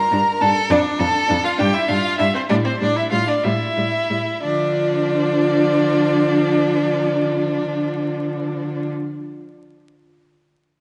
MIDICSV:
0, 0, Header, 1, 5, 480
1, 0, Start_track
1, 0, Key_signature, -1, "minor"
1, 0, Tempo, 592885
1, 570, Time_signature, 6, 3, 24, 8
1, 1531, Tempo, 617284
1, 2491, Tempo, 654308
1, 8125, End_track
2, 0, Start_track
2, 0, Title_t, "Violin"
2, 0, Program_c, 0, 40
2, 0, Note_on_c, 0, 82, 124
2, 324, Note_off_c, 0, 82, 0
2, 328, Note_on_c, 0, 81, 124
2, 393, Note_off_c, 0, 81, 0
2, 568, Note_on_c, 0, 74, 127
2, 633, Note_off_c, 0, 74, 0
2, 810, Note_on_c, 0, 81, 127
2, 1161, Note_off_c, 0, 81, 0
2, 1173, Note_on_c, 0, 77, 127
2, 1220, Note_off_c, 0, 77, 0
2, 1290, Note_on_c, 0, 79, 127
2, 1409, Note_on_c, 0, 76, 127
2, 1421, Note_off_c, 0, 79, 0
2, 1527, Note_on_c, 0, 77, 127
2, 1539, Note_off_c, 0, 76, 0
2, 1755, Note_off_c, 0, 77, 0
2, 1760, Note_on_c, 0, 76, 122
2, 1880, Note_off_c, 0, 76, 0
2, 1887, Note_on_c, 0, 72, 115
2, 1934, Note_off_c, 0, 72, 0
2, 1998, Note_on_c, 0, 74, 127
2, 2047, Note_off_c, 0, 74, 0
2, 2128, Note_on_c, 0, 72, 104
2, 2236, Note_off_c, 0, 72, 0
2, 2241, Note_on_c, 0, 74, 111
2, 2363, Note_off_c, 0, 74, 0
2, 2367, Note_on_c, 0, 76, 114
2, 2417, Note_off_c, 0, 76, 0
2, 2480, Note_on_c, 0, 77, 127
2, 2603, Note_on_c, 0, 74, 113
2, 2614, Note_off_c, 0, 77, 0
2, 2720, Note_on_c, 0, 76, 119
2, 2731, Note_off_c, 0, 74, 0
2, 3441, Note_off_c, 0, 76, 0
2, 3446, Note_on_c, 0, 74, 119
2, 6720, Note_off_c, 0, 74, 0
2, 8125, End_track
3, 0, Start_track
3, 0, Title_t, "Violin"
3, 0, Program_c, 1, 40
3, 0, Note_on_c, 1, 70, 102
3, 331, Note_on_c, 1, 69, 119
3, 343, Note_off_c, 1, 70, 0
3, 573, Note_on_c, 1, 62, 112
3, 586, Note_off_c, 1, 69, 0
3, 806, Note_on_c, 1, 69, 125
3, 818, Note_off_c, 1, 62, 0
3, 1166, Note_on_c, 1, 65, 108
3, 1178, Note_off_c, 1, 69, 0
3, 1288, Note_on_c, 1, 67, 114
3, 1300, Note_off_c, 1, 65, 0
3, 1410, Note_on_c, 1, 64, 111
3, 1423, Note_off_c, 1, 67, 0
3, 1531, Note_on_c, 1, 65, 118
3, 1543, Note_off_c, 1, 64, 0
3, 1756, Note_off_c, 1, 65, 0
3, 1760, Note_on_c, 1, 64, 95
3, 1809, Note_off_c, 1, 64, 0
3, 1879, Note_on_c, 1, 60, 102
3, 1928, Note_off_c, 1, 60, 0
3, 1998, Note_on_c, 1, 62, 111
3, 2048, Note_off_c, 1, 62, 0
3, 2119, Note_on_c, 1, 60, 92
3, 2169, Note_off_c, 1, 60, 0
3, 2237, Note_on_c, 1, 62, 108
3, 2363, Note_on_c, 1, 64, 102
3, 2374, Note_off_c, 1, 62, 0
3, 2481, Note_off_c, 1, 64, 0
3, 2485, Note_on_c, 1, 65, 93
3, 2596, Note_off_c, 1, 65, 0
3, 2601, Note_on_c, 1, 62, 98
3, 2649, Note_off_c, 1, 62, 0
3, 2720, Note_on_c, 1, 64, 98
3, 3433, Note_off_c, 1, 64, 0
3, 3451, Note_on_c, 1, 62, 97
3, 6725, Note_off_c, 1, 62, 0
3, 8125, End_track
4, 0, Start_track
4, 0, Title_t, "Viola"
4, 0, Program_c, 2, 41
4, 96, Note_on_c, 2, 62, 83
4, 161, Note_off_c, 2, 62, 0
4, 332, Note_on_c, 2, 62, 83
4, 397, Note_off_c, 2, 62, 0
4, 573, Note_on_c, 2, 62, 97
4, 638, Note_off_c, 2, 62, 0
4, 809, Note_on_c, 2, 62, 82
4, 874, Note_off_c, 2, 62, 0
4, 1041, Note_on_c, 2, 62, 88
4, 1106, Note_off_c, 2, 62, 0
4, 1283, Note_on_c, 2, 62, 100
4, 1348, Note_off_c, 2, 62, 0
4, 1524, Note_on_c, 2, 62, 88
4, 1587, Note_off_c, 2, 62, 0
4, 1760, Note_on_c, 2, 62, 81
4, 1822, Note_off_c, 2, 62, 0
4, 2002, Note_on_c, 2, 55, 96
4, 2064, Note_off_c, 2, 55, 0
4, 2243, Note_on_c, 2, 55, 75
4, 2305, Note_off_c, 2, 55, 0
4, 2480, Note_on_c, 2, 55, 82
4, 2539, Note_off_c, 2, 55, 0
4, 2725, Note_on_c, 2, 55, 87
4, 2784, Note_off_c, 2, 55, 0
4, 2964, Note_on_c, 2, 55, 71
4, 3022, Note_off_c, 2, 55, 0
4, 3206, Note_on_c, 2, 55, 64
4, 3264, Note_off_c, 2, 55, 0
4, 3448, Note_on_c, 2, 53, 93
4, 6722, Note_off_c, 2, 53, 0
4, 8125, End_track
5, 0, Start_track
5, 0, Title_t, "Cello"
5, 0, Program_c, 3, 42
5, 92, Note_on_c, 3, 43, 98
5, 157, Note_off_c, 3, 43, 0
5, 337, Note_on_c, 3, 43, 95
5, 402, Note_off_c, 3, 43, 0
5, 570, Note_on_c, 3, 41, 109
5, 635, Note_off_c, 3, 41, 0
5, 809, Note_on_c, 3, 41, 103
5, 874, Note_off_c, 3, 41, 0
5, 1055, Note_on_c, 3, 41, 99
5, 1120, Note_off_c, 3, 41, 0
5, 1300, Note_on_c, 3, 43, 115
5, 1365, Note_off_c, 3, 43, 0
5, 1535, Note_on_c, 3, 43, 99
5, 1597, Note_off_c, 3, 43, 0
5, 1773, Note_on_c, 3, 43, 98
5, 1835, Note_off_c, 3, 43, 0
5, 2009, Note_on_c, 3, 45, 111
5, 2071, Note_off_c, 3, 45, 0
5, 2249, Note_on_c, 3, 45, 91
5, 2311, Note_off_c, 3, 45, 0
5, 2492, Note_on_c, 3, 45, 89
5, 2550, Note_off_c, 3, 45, 0
5, 2724, Note_on_c, 3, 45, 101
5, 2783, Note_off_c, 3, 45, 0
5, 2964, Note_on_c, 3, 45, 74
5, 3023, Note_off_c, 3, 45, 0
5, 3204, Note_on_c, 3, 45, 76
5, 3262, Note_off_c, 3, 45, 0
5, 3449, Note_on_c, 3, 50, 88
5, 6723, Note_off_c, 3, 50, 0
5, 8125, End_track
0, 0, End_of_file